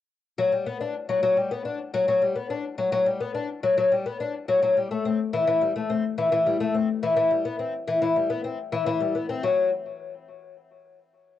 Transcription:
0.38 0.51 F#3 medium
0.52 0.65 G3 medium
0.66 0.79 B3 medium
0.80 0.94 D4 medium
1.09 1.21 F#3 medium
1.23 1.35 F#3 medium
1.37 1.50 G3 medium
1.51 1.64 B3 medium
1.65 1.79 D4 medium
1.94 2.07 F#3 medium
2.08 2.21 F#3 medium
2.22 2.35 G3 medium
2.36 2.49 B3 medium
2.50 2.64 D4 medium
2.78 2.91 F#3 medium
2.92 3.05 F#3 loud
3.06 3.19 G3 medium
3.21 3.34 B3 medium
3.35 3.48 D4 medium
3.63 3.76 F#3 medium
3.78 3.90 F#3 loud
3.92 4.04 G3 medium
4.06 4.19 B3 medium
4.20 4.34 D4 medium
4.48 4.61 F#3 medium
4.62 4.75 F#3 medium
4.77 4.89 G3 medium
4.91 5.04 A3 medium
5.05 5.18 C4 medium
5.33 5.46 E3 medium
5.47 5.60 E3 medium
5.61 5.74 G3 medium
5.76 5.88 A3 medium
5.90 6.03 C4 medium
6.18 6.31 E3 medium
6.32 6.45 E3 loud
6.46 6.59 G3 medium
6.60 6.73 A3 medium
6.75 6.88 C4 medium
7.03 7.15 E3 loud
7.17 7.30 E3 loud
7.31 7.44 G3 medium
7.45 7.58 B3 medium
7.59 7.73 C4 medium
7.88 8.01 E3 medium
8.02 8.15 E3 medium
8.16 8.29 G3 medium
8.30 8.43 B3 medium
8.44 8.58 C4 medium
8.72 8.85 E3 loud
8.86 8.99 E3 loud
9.00 9.14 G3 medium
9.15 9.28 B3 medium
9.29 9.43 C4 medium
9.43 9.70 F#3 medium

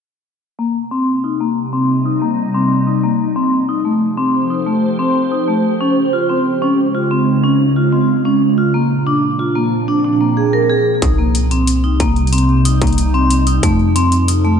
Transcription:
0.59 3.20 C3 medium
0.59 0.67 A#3 medium
0.91 0.99 C4 medium
1.24 3.20 G3 medium
1.24 1.37 D#4 medium
1.31 4.24 D#4 medium
1.40 1.48 A#3 medium
1.73 1.81 C4 medium
2.05 2.19 D#4 medium
2.22 2.30 A#3 medium
2.54 2.62 C4 medium
2.87 3.00 D#4 medium
3.03 3.11 A#3 medium
3.20 5.81 F3 medium
3.36 3.44 C4 medium
3.50 6.85 C5 medium
3.69 3.82 D#4 medium
3.69 6.85 G4 medium
3.85 3.93 A3 medium
4.09 5.81 A4 medium
4.18 4.26 C4 loud
4.50 4.64 D#4 medium
4.66 4.74 A3 medium
4.99 5.07 C4 medium
5.32 5.45 D#4 medium
5.48 5.56 A3 medium
5.80 8.41 C#3 medium
5.80 5.89 C#4 medium
5.90 8.41 G#3 medium
6.13 6.27 F4 medium
6.29 6.37 C4 medium
6.62 6.70 C#4 medium
6.62 8.41 D#4 medium
6.95 7.08 F4 medium
6.95 9.46 F4 medium
7.11 7.19 C4 medium
7.44 7.52 C#4 medium
7.76 7.90 F4 medium
7.93 8.01 C4 medium
8.25 8.33 C#4 medium
8.41 11.02 A#2 medium
8.58 8.71 F4 medium
8.74 8.82 A#3 medium
8.86 11.02 F3 medium
8.86 11.02 D4 medium
9.07 9.15 D4 medium
9.34 11.81 C4 medium
9.39 9.53 F4 medium
9.56 9.64 A#3 medium
9.88 9.96 D4 medium
10.04 10.20 D4 medium
10.21 10.29 A#3 medium
10.37 10.53 G#4 medium
10.53 10.69 A#4 medium
10.70 10.85 G#4 medium
11.02 13.60 C2 medium
11.02 13.63 C3 medium
11.02 11.16 D#4 medium
11.02 kick loud
11.02 closed hi-hat medium
11.18 11.27 A#3 medium
11.33 13.63 G3 medium
11.33 closed hi-hat medium
11.51 11.59 C4 medium
11.51 closed hi-hat soft
11.67 closed hi-hat medium
11.84 11.97 D#4 medium
11.95 14.60 D#4 medium
12.00 12.08 A#3 medium
12.00 kick medium
12.00 closed hi-hat medium
12.16 closed hi-hat soft
12.27 closed hi-hat soft
12.33 12.41 C4 medium
12.33 closed hi-hat medium
12.38 closed hi-hat soft
12.65 12.79 D#4 medium
12.65 closed hi-hat medium
12.82 12.90 A#3 medium
12.82 kick loud
12.82 closed hi-hat soft
12.87 closed hi-hat soft
12.93 closed hi-hat soft
12.98 closed hi-hat medium
13.14 13.22 C4 medium
13.31 closed hi-hat medium
13.47 13.60 D#4 medium
13.47 closed hi-hat soft
13.63 14.60 F2 medium
13.63 14.60 F3 medium
13.63 13.71 A3 medium
13.63 kick loud
13.63 closed hi-hat medium
13.88 14.60 A4 medium
13.88 14.60 C5 medium
13.96 14.04 C4 medium
13.96 closed hi-hat medium
14.12 closed hi-hat soft
14.28 14.42 D#4 medium
14.28 closed hi-hat medium
14.45 14.53 A3 medium

